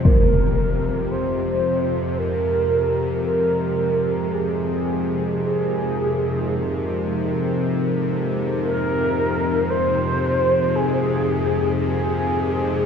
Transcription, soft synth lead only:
\new Staff \with { instrumentName = "Soft synth lead" } { \time 4/4 \key f \minor \tempo 4 = 56 bes'4 c''4 bes'4 bes'4 | aes'4 aes'2 r4 | bes'4 c''4 aes'4 aes'4 | }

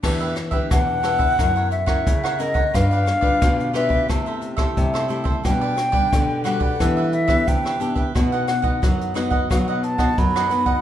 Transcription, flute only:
\new Staff \with { instrumentName = "Flute" } { \time 4/4 \key e \minor \tempo 4 = 89 r4 fis''4. e''4 dis''8 | f''4. e''8 r2 | g''4. fis''4 e''8 g''4 | r8 fis''8 r4 fis''8 a''8 b''4 | }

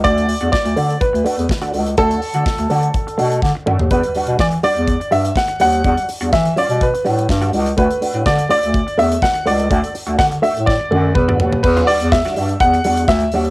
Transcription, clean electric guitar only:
\new Staff \with { instrumentName = "Clean electric guitar" } { \time 4/4 \key e \minor \tempo 4 = 124 <a d' fis'>8 r16 <a d' fis'>16 r8 <a d' fis'>8 r8 <a d' fis'>8 r16 <a d' fis'>16 <a d' fis'>16 r16 | <a d' fis'>8 r16 <a d' fis'>16 r8 <a d' fis'>8 r8 <a d' fis'>8 r8 <a d' fis'>8 | <g d' fis'>8 <g d' fis'>16 <g d' fis'>16 r8 <g d' fis'>8 r8 <g d' fis'>8 r8 <g d' fis'>8 | <g d' fis'>8 r16 <g d' fis'>16 r8 <g d' fis'>8 r8 <g d' fis'>8 r16 <g d' fis'>16 <g d' fis'>16 r16 |
<a d' fis'>8 <a d' fis'>16 <a d' fis'>16 r8 <a d' fis'>8 r8 <a d' fis'>8 r8 <a d' fis'>8 | <a d' fis'>8 r16 <a d' fis'>16 r8 <a d' fis'>8 r8 <a d' fis'>8 r16 <a d' fis'>16 <a d' fis'>16 r16 | r16 <g d' fis'>16 <g d' fis'>16 r8 <g d' fis'>16 <g d' fis'>8 r8 <g d' fis'>16 <g d' fis'>16 r8 <g d' fis'>8 | }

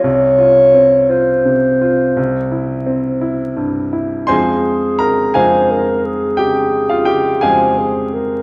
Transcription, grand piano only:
<<
  \new Staff \with { instrumentName = "Grand piano" } { \time 12/8 \key f \minor \tempo 4. = 57 c,8 f'8 c'8 f'8 c8 f'8 c,8 e'8 c'8 e'8 g,8 e'8 | <c'' aes'' c'''>4 <bes' bes''>8 <aes' f'' aes''>4. <g' g''>8. <f' f''>16 <g' g''>8 <aes' f'' aes''>4. | }
  \new Staff \with { instrumentName = "Grand piano" } { \time 12/8 \key f \minor r1. | <f, aes c' f'>4. <f, aes c' f'>2. <f, aes c' f'>4. | }
>>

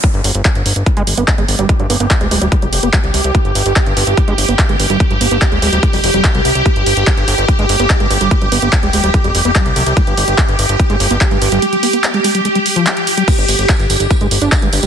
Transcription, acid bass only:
\new Staff \with { instrumentName = "Acid bass" } { \clef bass \time 4/4 \tempo 4 = 145 g16 r2 aes16 r16 b16 r16 aes16 r16 g16 | aes16 g16 b16 b16 r16 aes16 aes16 g16 aes16 g16 r16 b16 g16 r8. | g16 r2 aes16 r16 b16 r16 aes16 r16 g16 | aes16 g16 b16 b16 r16 aes16 aes16 g16 aes16 g16 r16 g16 g'16 g16 r8 |
g16 r2 aes16 r16 b16 r16 aes16 r16 g16 | aes16 g16 b16 b16 r16 aes16 aes16 g16 aes16 g16 r16 b16 g8 f16 r16 | g16 r2 aes16 r16 b16 r16 aes16 r16 g16 | aes16 g16 b16 b16 r16 aes16 aes16 g16 aes16 g16 r16 f16 d'16 r8 g16 |
g16 r2 aes16 r16 d'16 r16 aes16 r16 g16 | }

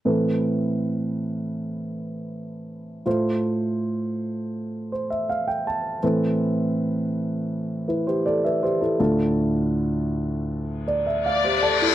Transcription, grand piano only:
\new Staff \with { instrumentName = "Grand piano" } { \time 4/4 \key a \minor \tempo 4 = 80 << { r1 | r2 r8 c''16 e''16 f''16 g''16 a''8 | r2 r8 <e' b'>16 <g' c''>16 <a' d''>16 <b' e''>16 <g' c''>16 <e' a'>16~ | <e' a'>16 r2 r16 d''16 e''16 f''16 <g' c''>16 <a' d'' a''>16 <e' a'>16 | } \\ { <a, e c' a' b'>1 | <a, a f' a' c''>1 | <a, e c' a' b'>1 | <d, a, d' f' a'>1 | } >> }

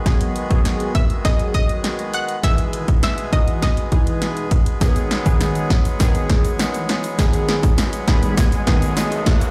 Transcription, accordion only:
<<
  \new Staff \with { instrumentName = "Accordion" } { \time 4/4 \key b \major \tempo 4 = 101 <dis fis' gis'>1 | <b, gis'>1 | <fis gis'>1~ | <fis gis'>1 | }
  \new Staff \with { instrumentName = "Accordion" } { \time 4/4 \key b \major <gis b>1~ | <gis b>1~ | <gis b>1~ | <gis b>1 | }
>>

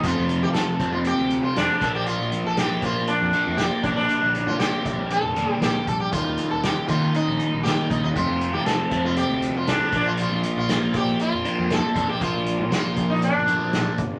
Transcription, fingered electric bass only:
\new Staff \with { instrumentName = "Fingered electric bass" } { \clef bass \time 4/4 \key bes \major \tempo 4 = 118 f,16 f,8 f8. f,8. d,8 r16 f,16 r16 bes,,8~ | bes,,16 bes,,16 r16 bes,,8 r16 bes,8 r16 f,16 r16 f,8 r16 bes,,16 bes,,16 | r16 bes,,8 bes,8. bes,,8. f,,8 r16 bes,,16 r16 bes,,8 | ees,16 ees,16 r16 ees,8 r16 ees8 r16 bes,,16 r16 bes,,8 r16 bes,,16 ees,16 |
f,16 f,8 f8. f,8. d,8 r16 c,16 r16 bes,,8~ | bes,,16 bes,,16 r16 bes,,8 r16 bes,8 r16 f,16 r16 f,8 r16 f,16 bes,,16 | r16 bes,,8 bes,8. bes,,8. g,,8 r16 bes,,16 r16 g,,8 | }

